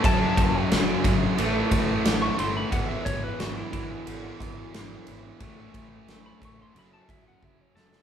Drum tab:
RD |x-x-x-x-x-x-x-x-|x-x-x-x-x-x-x-x-|x-x-x-x-x-x-----|
SD |----o-------o---|----o-------o---|----o---------oo|
BD |o-o---o---o-----|o-o---o---o-----|o-o---o---o-o---|